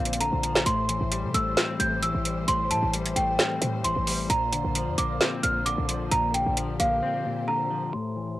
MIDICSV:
0, 0, Header, 1, 6, 480
1, 0, Start_track
1, 0, Tempo, 454545
1, 698, Time_signature, 4, 2, 24, 8
1, 8868, End_track
2, 0, Start_track
2, 0, Title_t, "Celesta"
2, 0, Program_c, 0, 8
2, 0, Note_on_c, 0, 77, 81
2, 177, Note_off_c, 0, 77, 0
2, 218, Note_on_c, 0, 82, 79
2, 669, Note_off_c, 0, 82, 0
2, 697, Note_on_c, 0, 84, 91
2, 1375, Note_off_c, 0, 84, 0
2, 1419, Note_on_c, 0, 88, 82
2, 1870, Note_off_c, 0, 88, 0
2, 1898, Note_on_c, 0, 91, 81
2, 2093, Note_off_c, 0, 91, 0
2, 2138, Note_on_c, 0, 88, 83
2, 2589, Note_off_c, 0, 88, 0
2, 2618, Note_on_c, 0, 84, 106
2, 2813, Note_off_c, 0, 84, 0
2, 2858, Note_on_c, 0, 81, 83
2, 3053, Note_off_c, 0, 81, 0
2, 3337, Note_on_c, 0, 79, 85
2, 4015, Note_off_c, 0, 79, 0
2, 4057, Note_on_c, 0, 84, 75
2, 4509, Note_off_c, 0, 84, 0
2, 4541, Note_on_c, 0, 82, 95
2, 5217, Note_off_c, 0, 82, 0
2, 5258, Note_on_c, 0, 86, 81
2, 5709, Note_off_c, 0, 86, 0
2, 5736, Note_on_c, 0, 89, 82
2, 5931, Note_off_c, 0, 89, 0
2, 5975, Note_on_c, 0, 86, 86
2, 6427, Note_off_c, 0, 86, 0
2, 6458, Note_on_c, 0, 82, 102
2, 6652, Note_off_c, 0, 82, 0
2, 6697, Note_on_c, 0, 79, 85
2, 6892, Note_off_c, 0, 79, 0
2, 7180, Note_on_c, 0, 77, 81
2, 7857, Note_off_c, 0, 77, 0
2, 7898, Note_on_c, 0, 82, 78
2, 8349, Note_off_c, 0, 82, 0
2, 8375, Note_on_c, 0, 84, 90
2, 8868, Note_off_c, 0, 84, 0
2, 8868, End_track
3, 0, Start_track
3, 0, Title_t, "String section"
3, 0, Program_c, 1, 48
3, 0, Note_on_c, 1, 50, 81
3, 0, Note_on_c, 1, 58, 72
3, 0, Note_on_c, 1, 65, 72
3, 0, Note_on_c, 1, 72, 87
3, 659, Note_off_c, 1, 50, 0
3, 659, Note_off_c, 1, 58, 0
3, 659, Note_off_c, 1, 65, 0
3, 700, Note_on_c, 1, 52, 80
3, 700, Note_on_c, 1, 57, 71
3, 700, Note_on_c, 1, 67, 72
3, 4500, Note_off_c, 1, 52, 0
3, 4501, Note_off_c, 1, 57, 0
3, 4501, Note_off_c, 1, 67, 0
3, 4538, Note_on_c, 1, 50, 83
3, 4538, Note_on_c, 1, 58, 74
3, 4538, Note_on_c, 1, 65, 73
3, 6439, Note_off_c, 1, 65, 0
3, 6459, Note_on_c, 1, 67, 72
3, 8335, Note_off_c, 1, 72, 0
3, 8340, Note_off_c, 1, 50, 0
3, 8340, Note_off_c, 1, 58, 0
3, 8359, Note_off_c, 1, 67, 0
3, 8377, Note_on_c, 1, 52, 74
3, 8377, Note_on_c, 1, 67, 68
3, 8377, Note_on_c, 1, 72, 82
3, 8378, Note_on_c, 1, 57, 70
3, 8868, Note_off_c, 1, 52, 0
3, 8868, Note_off_c, 1, 57, 0
3, 8868, Note_off_c, 1, 67, 0
3, 8868, Note_off_c, 1, 72, 0
3, 8868, End_track
4, 0, Start_track
4, 0, Title_t, "Clean electric guitar"
4, 0, Program_c, 2, 27
4, 0, Note_on_c, 2, 46, 81
4, 0, Note_on_c, 2, 50, 84
4, 0, Note_on_c, 2, 53, 86
4, 0, Note_on_c, 2, 58, 89
4, 0, Note_on_c, 2, 60, 102
4, 204, Note_off_c, 2, 50, 0
4, 216, Note_on_c, 2, 50, 93
4, 445, Note_off_c, 2, 53, 0
4, 458, Note_on_c, 2, 53, 82
4, 695, Note_off_c, 2, 46, 0
4, 697, Note_off_c, 2, 50, 0
4, 698, Note_off_c, 2, 53, 0
4, 698, Note_off_c, 2, 58, 0
4, 699, Note_on_c, 2, 45, 94
4, 700, Note_off_c, 2, 60, 0
4, 941, Note_on_c, 2, 52, 81
4, 1178, Note_on_c, 2, 55, 98
4, 1419, Note_on_c, 2, 57, 87
4, 1659, Note_on_c, 2, 60, 98
4, 1883, Note_off_c, 2, 45, 0
4, 1895, Note_on_c, 2, 45, 88
4, 2122, Note_off_c, 2, 52, 0
4, 2134, Note_on_c, 2, 52, 88
4, 2367, Note_off_c, 2, 55, 0
4, 2380, Note_on_c, 2, 55, 87
4, 2600, Note_off_c, 2, 45, 0
4, 2613, Note_on_c, 2, 45, 98
4, 2619, Note_off_c, 2, 57, 0
4, 2849, Note_off_c, 2, 52, 0
4, 2858, Note_off_c, 2, 60, 0
4, 2861, Note_on_c, 2, 52, 83
4, 3087, Note_off_c, 2, 55, 0
4, 3100, Note_on_c, 2, 55, 95
4, 3342, Note_on_c, 2, 57, 90
4, 3577, Note_on_c, 2, 60, 105
4, 3802, Note_off_c, 2, 45, 0
4, 3815, Note_on_c, 2, 45, 84
4, 4043, Note_off_c, 2, 52, 0
4, 4056, Note_on_c, 2, 52, 83
4, 4283, Note_off_c, 2, 55, 0
4, 4296, Note_on_c, 2, 55, 88
4, 4532, Note_off_c, 2, 45, 0
4, 4537, Note_off_c, 2, 52, 0
4, 4537, Note_off_c, 2, 55, 0
4, 4537, Note_on_c, 2, 46, 92
4, 4538, Note_off_c, 2, 60, 0
4, 4540, Note_off_c, 2, 57, 0
4, 4778, Note_on_c, 2, 50, 82
4, 5017, Note_on_c, 2, 53, 87
4, 5258, Note_on_c, 2, 58, 85
4, 5496, Note_on_c, 2, 60, 104
4, 5726, Note_off_c, 2, 46, 0
4, 5739, Note_on_c, 2, 46, 86
4, 5966, Note_off_c, 2, 50, 0
4, 5979, Note_on_c, 2, 50, 87
4, 6204, Note_off_c, 2, 53, 0
4, 6217, Note_on_c, 2, 53, 86
4, 6444, Note_off_c, 2, 46, 0
4, 6457, Note_on_c, 2, 46, 98
4, 6458, Note_off_c, 2, 58, 0
4, 6682, Note_off_c, 2, 50, 0
4, 6695, Note_on_c, 2, 50, 80
4, 6697, Note_off_c, 2, 60, 0
4, 6925, Note_off_c, 2, 53, 0
4, 6938, Note_on_c, 2, 53, 83
4, 7177, Note_on_c, 2, 58, 92
4, 7421, Note_on_c, 2, 60, 100
4, 7647, Note_off_c, 2, 46, 0
4, 7659, Note_on_c, 2, 46, 84
4, 7882, Note_off_c, 2, 50, 0
4, 7895, Note_on_c, 2, 50, 93
4, 8124, Note_off_c, 2, 53, 0
4, 8137, Note_on_c, 2, 53, 81
4, 8375, Note_off_c, 2, 46, 0
4, 8377, Note_off_c, 2, 50, 0
4, 8377, Note_off_c, 2, 53, 0
4, 8378, Note_off_c, 2, 58, 0
4, 8379, Note_on_c, 2, 45, 88
4, 8380, Note_off_c, 2, 60, 0
4, 8619, Note_on_c, 2, 52, 75
4, 8868, Note_off_c, 2, 45, 0
4, 8868, Note_off_c, 2, 52, 0
4, 8868, End_track
5, 0, Start_track
5, 0, Title_t, "808-style bass"
5, 0, Program_c, 3, 38
5, 0, Note_on_c, 3, 34, 108
5, 331, Note_off_c, 3, 34, 0
5, 346, Note_on_c, 3, 34, 104
5, 684, Note_off_c, 3, 34, 0
5, 699, Note_on_c, 3, 33, 113
5, 1051, Note_off_c, 3, 33, 0
5, 1065, Note_on_c, 3, 33, 111
5, 1306, Note_on_c, 3, 48, 103
5, 1321, Note_off_c, 3, 33, 0
5, 1413, Note_off_c, 3, 48, 0
5, 1419, Note_on_c, 3, 33, 104
5, 1649, Note_off_c, 3, 33, 0
5, 1898, Note_on_c, 3, 33, 105
5, 2251, Note_off_c, 3, 33, 0
5, 2266, Note_on_c, 3, 33, 101
5, 2604, Note_off_c, 3, 33, 0
5, 2618, Note_on_c, 3, 33, 109
5, 2858, Note_on_c, 3, 45, 97
5, 2873, Note_off_c, 3, 33, 0
5, 2979, Note_off_c, 3, 45, 0
5, 2985, Note_on_c, 3, 33, 108
5, 3324, Note_off_c, 3, 33, 0
5, 3338, Note_on_c, 3, 33, 105
5, 3568, Note_off_c, 3, 33, 0
5, 3817, Note_on_c, 3, 45, 108
5, 4058, Note_on_c, 3, 31, 103
5, 4074, Note_off_c, 3, 45, 0
5, 4179, Note_off_c, 3, 31, 0
5, 4185, Note_on_c, 3, 33, 104
5, 4524, Note_off_c, 3, 33, 0
5, 4538, Note_on_c, 3, 34, 111
5, 4778, Note_on_c, 3, 33, 98
5, 4794, Note_off_c, 3, 34, 0
5, 4899, Note_off_c, 3, 33, 0
5, 4906, Note_on_c, 3, 34, 107
5, 5145, Note_on_c, 3, 41, 98
5, 5161, Note_off_c, 3, 34, 0
5, 5253, Note_off_c, 3, 41, 0
5, 5259, Note_on_c, 3, 34, 106
5, 5489, Note_off_c, 3, 34, 0
5, 5738, Note_on_c, 3, 34, 106
5, 6090, Note_off_c, 3, 34, 0
5, 6106, Note_on_c, 3, 34, 106
5, 6444, Note_off_c, 3, 34, 0
5, 6458, Note_on_c, 3, 34, 114
5, 6811, Note_off_c, 3, 34, 0
5, 6826, Note_on_c, 3, 34, 104
5, 7164, Note_off_c, 3, 34, 0
5, 7178, Note_on_c, 3, 34, 103
5, 7408, Note_off_c, 3, 34, 0
5, 8868, End_track
6, 0, Start_track
6, 0, Title_t, "Drums"
6, 58, Note_on_c, 9, 42, 64
6, 138, Note_off_c, 9, 42, 0
6, 138, Note_on_c, 9, 42, 80
6, 218, Note_off_c, 9, 42, 0
6, 218, Note_on_c, 9, 42, 75
6, 323, Note_off_c, 9, 42, 0
6, 458, Note_on_c, 9, 42, 82
6, 564, Note_off_c, 9, 42, 0
6, 585, Note_on_c, 9, 38, 101
6, 691, Note_off_c, 9, 38, 0
6, 698, Note_on_c, 9, 42, 87
6, 804, Note_off_c, 9, 42, 0
6, 938, Note_on_c, 9, 42, 76
6, 1044, Note_off_c, 9, 42, 0
6, 1178, Note_on_c, 9, 42, 83
6, 1284, Note_off_c, 9, 42, 0
6, 1418, Note_on_c, 9, 42, 79
6, 1524, Note_off_c, 9, 42, 0
6, 1658, Note_on_c, 9, 38, 117
6, 1658, Note_on_c, 9, 42, 83
6, 1763, Note_off_c, 9, 38, 0
6, 1764, Note_off_c, 9, 42, 0
6, 1898, Note_on_c, 9, 42, 83
6, 2004, Note_off_c, 9, 42, 0
6, 2138, Note_on_c, 9, 42, 78
6, 2243, Note_off_c, 9, 42, 0
6, 2378, Note_on_c, 9, 42, 70
6, 2483, Note_off_c, 9, 42, 0
6, 2617, Note_on_c, 9, 42, 89
6, 2723, Note_off_c, 9, 42, 0
6, 2858, Note_on_c, 9, 42, 73
6, 2963, Note_off_c, 9, 42, 0
6, 3098, Note_on_c, 9, 42, 71
6, 3204, Note_off_c, 9, 42, 0
6, 3226, Note_on_c, 9, 42, 68
6, 3331, Note_off_c, 9, 42, 0
6, 3339, Note_on_c, 9, 42, 79
6, 3444, Note_off_c, 9, 42, 0
6, 3578, Note_on_c, 9, 38, 119
6, 3578, Note_on_c, 9, 42, 85
6, 3683, Note_off_c, 9, 38, 0
6, 3684, Note_off_c, 9, 42, 0
6, 3818, Note_on_c, 9, 42, 78
6, 3924, Note_off_c, 9, 42, 0
6, 4059, Note_on_c, 9, 42, 74
6, 4164, Note_off_c, 9, 42, 0
6, 4299, Note_on_c, 9, 46, 58
6, 4404, Note_off_c, 9, 46, 0
6, 4539, Note_on_c, 9, 42, 88
6, 4644, Note_off_c, 9, 42, 0
6, 4779, Note_on_c, 9, 42, 75
6, 4884, Note_off_c, 9, 42, 0
6, 5018, Note_on_c, 9, 42, 83
6, 5124, Note_off_c, 9, 42, 0
6, 5258, Note_on_c, 9, 42, 77
6, 5364, Note_off_c, 9, 42, 0
6, 5498, Note_on_c, 9, 38, 116
6, 5499, Note_on_c, 9, 42, 88
6, 5604, Note_off_c, 9, 38, 0
6, 5604, Note_off_c, 9, 42, 0
6, 5738, Note_on_c, 9, 42, 87
6, 5844, Note_off_c, 9, 42, 0
6, 5978, Note_on_c, 9, 42, 75
6, 6083, Note_off_c, 9, 42, 0
6, 6218, Note_on_c, 9, 42, 73
6, 6324, Note_off_c, 9, 42, 0
6, 6458, Note_on_c, 9, 42, 88
6, 6563, Note_off_c, 9, 42, 0
6, 6698, Note_on_c, 9, 42, 73
6, 6803, Note_off_c, 9, 42, 0
6, 6938, Note_on_c, 9, 42, 83
6, 7043, Note_off_c, 9, 42, 0
6, 7178, Note_on_c, 9, 42, 78
6, 7283, Note_off_c, 9, 42, 0
6, 8868, End_track
0, 0, End_of_file